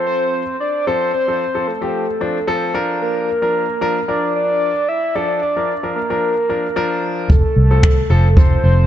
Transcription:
0.00 0.41 F3 medium
0.00 0.42 C4 medium
0.00 0.42 A4 medium
0.07 0.56 C5 loud
0.60 0.85 D5 loud
0.87 1.10 F3 medium
0.87 1.10 C4 medium
0.87 1.10 A4 medium
0.87 1.12 C5 loud
1.14 1.69 C5 loud
1.28 1.42 F3 medium
1.28 1.43 C4 medium
1.28 1.43 A4 medium
1.54 1.69 F3 medium
1.54 1.69 C4 medium
1.54 1.69 A4 medium
1.67 2.74 A4 medium
1.81 2.04 F3 medium
1.81 2.04 C4 medium
1.81 2.04 G4 medium
2.21 2.37 F3 medium
2.21 2.37 C4 medium
2.21 2.37 D4 medium
2.47 2.73 F3 loud
2.47 2.74 C4 medium
2.47 2.75 A4 loud
2.74 3.28 F3 medium
2.74 3.28 D4 medium
2.74 3.28 A#4 loud
3.01 4.04 A#4 loud
3.42 3.65 F3 medium
3.42 3.65 D4 medium
3.42 3.65 A#4 medium
3.81 3.97 F3 medium
3.81 3.98 D4 medium
3.81 3.98 A#4 loud
4.08 4.70 F3 medium
4.08 4.70 D4 medium
4.08 4.70 A#4 medium
4.08 4.33 D5 loud
4.35 4.90 D5 loud
4.88 5.17 E5 loud
5.15 5.39 F3 medium
5.15 5.39 D4 medium
5.15 5.39 A4 medium
5.15 5.41 D5 loud
5.42 5.92 D5 loud
5.56 5.71 F3 medium
5.56 5.71 D4 medium
5.56 5.71 A#4 medium
5.83 5.98 F3 medium
5.83 5.98 D4 medium
5.83 5.98 A#4 medium
5.96 6.99 A#4 medium
6.10 6.33 F3 medium
6.10 6.33 D4 medium
6.10 6.33 A#4 medium
6.49 6.65 F3 medium
6.49 6.66 D4 medium
6.49 6.66 A#4 medium
6.76 7.30 F3 loud
6.76 7.30 D4 medium
6.76 7.30 A#4 loud
7.30 7.42 F1 loud
7.30 8.38 A4 medium
7.30 kick loud
7.56 8.02 C2 medium
7.70 7.93 F3 medium
7.70 7.94 C4 medium
7.70 7.94 A4 medium
7.83 finger snap loud
7.83 kick loud
8.10 8.55 F1 medium
8.10 8.26 F3 medium
8.10 8.26 C4 medium
8.10 8.26 A4 loud
8.37 8.87 F3 medium
8.37 8.87 C4 medium
8.37 8.87 A4 medium
8.37 8.63 C5 medium
8.37 kick loud
8.64 8.86 F1 medium
8.64 8.87 C5 loud

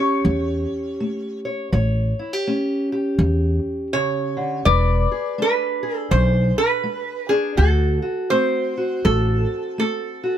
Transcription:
0.00 0.19 A3 medium
0.00 1.69 C#4 medium
0.00 1.69 G4 medium
0.00 1.39 C#5 medium
0.00 1.44 C#5 medium
0.25 0.64 E2 medium
0.25 0.93 E3 medium
1.00 1.67 A3 medium
1.45 1.69 C#5 medium
1.72 2.12 A1 medium
1.72 2.40 A2 medium
1.72 4.62 C#5 medium
2.19 2.33 E4 soft
2.33 2.91 G4 soft
2.47 3.14 A3 medium
2.47 4.63 C#4 medium
2.92 4.63 G4 medium
3.19 3.58 E2 medium
3.19 3.87 E3 medium
3.93 4.38 C#3 medium
3.93 4.68 C#5 medium
4.37 4.65 D3 medium
4.65 5.05 E1 medium
4.65 5.33 E3 medium
4.65 7.55 B4 medium
4.65 5.34 D5 loud
5.12 5.82 G#4 soft
5.38 6.06 G#3 medium
5.38 7.29 D4 medium
5.38 5.96 B4 medium
5.83 7.54 G#4 medium
5.96 6.16 A4 medium
6.11 6.51 B1 loud
6.11 6.79 B2 medium
6.11 6.58 C5 medium
6.58 7.33 B4 medium
6.83 7.52 G#3 medium
7.29 7.55 D4 medium
7.29 7.57 G#4 medium
7.57 7.97 D2 medium
7.57 8.25 D3 medium
7.57 8.01 F#4 medium
7.57 8.33 A4 medium
8.02 8.76 F#4 soft
8.30 8.99 A3 medium
8.30 10.38 C4 medium
8.30 9.06 C5 medium
8.77 10.22 F#4 medium
9.05 9.44 A1 loud
9.05 9.73 A2 medium
9.05 9.78 A4 medium
9.78 10.38 A3 medium
9.78 10.38 A4 medium
10.24 10.38 F#4 medium

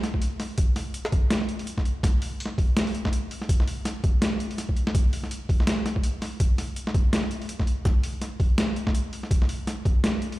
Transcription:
0.03 snare medium
0.03 closed hi-hat soft
0.14 kick medium
0.22 closed hi-hat medium
0.40 snare medium
0.40 open hi-hat medium
0.58 kick loud
0.58 closed hi-hat medium
0.76 snare medium
0.76 open hi-hat medium
0.94 closed hi-hat medium
1.05 snare medium
1.12 kick loud
1.12 closed hi-hat soft
1.30 snare loud
1.30 closed hi-hat medium
1.41 snare medium
1.49 closed hi-hat soft
1.59 open hi-hat soft
1.67 closed hi-hat medium
1.78 kick medium
1.78 snare medium
1.85 closed hi-hat soft
2.03 kick loud
2.03 snare medium
2.03 closed hi-hat medium
2.22 open hi-hat medium
2.40 closed hi-hat medium
2.46 snare medium
2.58 kick loud
2.58 open hi-hat soft
2.77 snare loud
2.77 snare medium
2.77 closed hi-hat medium
2.87 open hi-hat soft
2.95 closed hi-hat soft
3.05 kick medium
3.05 snare medium
3.13 closed hi-hat medium
3.31 open hi-hat medium
3.42 snare medium
3.49 kick loud
3.49 closed hi-hat medium
3.60 snare medium
3.68 open hi-hat medium
3.85 snare medium
3.85 closed hi-hat medium
4.04 kick loud
4.04 closed hi-hat soft
4.22 snare loud
4.22 snare medium
4.22 closed hi-hat medium
4.40 closed hi-hat soft
4.51 open hi-hat soft
4.58 snare medium
4.58 closed hi-hat medium
4.69 kick medium
4.77 closed hi-hat soft
4.87 snare medium
4.95 kick loud
4.95 closed hi-hat medium
5.13 open hi-hat medium
5.24 snare medium
5.31 closed hi-hat medium
5.49 kick loud
5.49 open hi-hat soft
5.60 snare medium
5.67 snare loud
5.67 closed hi-hat medium
5.86 snare medium
5.86 closed hi-hat soft
5.96 kick medium
6.04 closed hi-hat medium
6.22 snare medium
6.22 open hi-hat medium
6.40 kick loud
6.40 closed hi-hat medium
6.58 snare medium
6.58 open hi-hat medium
6.76 closed hi-hat medium
6.87 snare medium
6.94 kick loud
6.94 closed hi-hat soft
7.13 snare loud
7.13 closed hi-hat medium
7.23 snare medium
7.31 closed hi-hat soft
7.42 open hi-hat soft
7.49 closed hi-hat medium
7.60 kick medium
7.60 snare medium
7.67 closed hi-hat soft
7.85 kick loud
7.85 snare medium
7.85 closed hi-hat medium
8.03 open hi-hat medium
8.22 snare soft
8.22 closed hi-hat medium
8.40 kick loud
8.40 open hi-hat soft
8.58 snare loud
8.58 snare soft
8.58 closed hi-hat medium
8.76 closed hi-hat soft
8.87 kick medium
8.87 snare medium
8.95 closed hi-hat medium
9.13 open hi-hat medium
9.23 snare medium
9.31 kick loud
9.31 closed hi-hat medium
9.42 snare medium
9.49 open hi-hat medium
9.67 snare medium
9.67 closed hi-hat medium
9.85 kick loud
9.85 closed hi-hat soft
10.04 snare loud
10.04 snare soft
10.04 closed hi-hat medium
10.22 closed hi-hat soft
10.32 open hi-hat soft

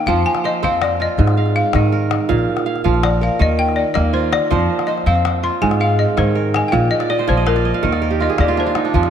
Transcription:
0.00 0.13 D#3 medium
0.00 1.45 A#3 medium
0.06 0.22 F2 loud
0.06 1.23 F3 medium
0.06 0.44 C5 medium
0.06 0.26 F5 loud
0.06 calabash thump medium
0.06 calabash click soft
0.16 calabash click soft
0.26 0.45 G#5 loud
0.35 calabash click soft
0.44 0.62 C5 medium
0.44 0.62 D#5 medium
0.54 calabash click soft
0.63 1.06 F2 medium
0.63 2.43 C4 medium
0.63 1.82 C5 medium
0.63 0.83 F5 medium
0.63 calabash thump medium
0.73 calabash click soft
0.82 1.01 D5 medium
0.82 calabash click medium
1.00 2.51 F4 medium
1.00 1.52 D#5 medium
1.18 2.34 G#2 medium
1.18 1.61 G#2 medium
1.18 calabash thump medium
1.27 calabash click soft
1.37 2.28 F5 medium
1.46 calabash click soft
1.56 1.73 F5 medium
1.73 2.17 G#2 medium
1.73 2.34 D#3 medium
1.73 1.92 D#5 medium
1.73 calabash thump medium
1.73 calabash click medium
1.92 3.20 A#4 medium
2.11 calabash click medium
2.29 2.44 A#1 medium
2.29 3.45 A#2 medium
2.29 2.65 F5 medium
2.29 calabash thump medium
2.29 calabash click soft
2.39 calabash click soft
2.57 calabash click medium
2.66 2.84 F5 medium
2.76 calabash click soft
2.84 3.27 A#1 medium
2.84 3.45 F3 medium
2.84 3.84 F5 medium
2.84 calabash thump medium
2.94 calabash click soft
3.03 3.22 D5 medium
3.03 calabash click medium
3.21 4.48 A#4 medium
3.21 3.41 F5 medium
3.39 3.82 D#2 medium
3.39 4.56 D#3 medium
3.39 3.60 D#5 medium
3.39 calabash thump medium
3.59 3.78 G5 medium
3.69 calabash click soft
3.76 3.95 D5 medium
3.94 4.38 D#2 medium
3.94 5.88 A#3 medium
3.94 4.14 D#5 medium
3.94 calabash thump medium
3.94 calabash click medium
4.13 5.43 F4 medium
4.13 4.22 C5 medium
4.33 4.90 D5 medium
4.33 calabash click medium
4.51 4.65 F2 loud
4.51 5.66 F3 medium
4.51 4.87 C5 medium
4.51 calabash thump medium
4.51 calabash click soft
4.60 calabash click soft
4.79 calabash click medium
4.87 5.06 C5 medium
4.87 5.06 D#5 medium
4.98 calabash click soft
5.06 5.48 F2 medium
5.06 6.86 C4 medium
5.06 6.25 C5 medium
5.06 5.24 F5 loud
5.06 calabash thump medium
5.15 calabash click soft
5.25 calabash click medium
5.43 6.94 F4 medium
5.43 5.62 C6 medium
5.61 6.04 G#2 medium
5.61 6.77 G#2 medium
5.61 5.81 G#5 loud
5.61 calabash thump medium
5.71 calabash click soft
5.80 6.80 F5 medium
5.80 5.99 F5 medium
5.99 6.18 D#5 medium
6.17 6.60 G#2 medium
6.17 6.77 D#3 medium
6.17 6.35 C5 medium
6.17 calabash thump medium
6.17 calabash click medium
6.35 7.63 A#4 medium
6.54 6.69 G#5 medium
6.54 calabash click medium
6.68 7.88 A#2 medium
6.68 6.91 F5 loud
6.68 6.73 G5 medium
6.73 6.87 A#1 loud
6.73 calabash thump medium
6.91 7.10 D#5 medium
7.00 7.27 D5 medium
7.00 calabash click medium
7.10 7.27 D5 medium
7.10 7.34 D#5 medium
7.10 calabash click soft
7.18 8.38 C5 medium
7.18 calabash click soft
7.27 7.71 A#1 medium
7.27 7.88 F3 medium
7.27 7.47 C5 medium
7.27 7.55 D5 medium
7.27 calabash thump medium
7.37 7.62 D#5 medium
7.37 calabash click soft
7.46 7.98 A#4 medium
7.46 7.74 F5 medium
7.46 calabash click medium
7.56 7.89 D5 medium
7.56 calabash click soft
7.65 7.99 D#5 medium
7.74 8.74 F5 medium
7.83 8.26 D#2 medium
7.83 8.99 D#3 medium
7.83 8.01 A#4 medium
7.83 calabash thump medium
7.83 calabash click soft
7.93 8.81 D5 medium
7.93 calabash click soft
8.02 9.10 A#4 medium
8.11 8.36 G4 medium
8.20 8.48 F4 medium
8.20 8.40 D#5 medium
8.20 calabash click soft
8.30 9.10 G#4 medium
8.38 8.81 D#2 medium
8.38 9.10 A#3 medium
8.38 9.10 G4 medium
8.38 8.48 D5 medium
8.38 calabash thump medium
8.38 calabash click medium
8.48 8.66 F4 medium
8.57 8.81 D4 medium
8.57 8.93 C5 medium
8.57 calabash click soft
8.66 9.10 F4 medium
8.75 9.10 D#4 medium
8.75 calabash click medium
8.85 9.10 D4 medium
8.85 calabash click soft
8.94 9.10 F2 medium
8.94 9.10 F3 medium
8.94 calabash thump medium
9.03 calabash click soft

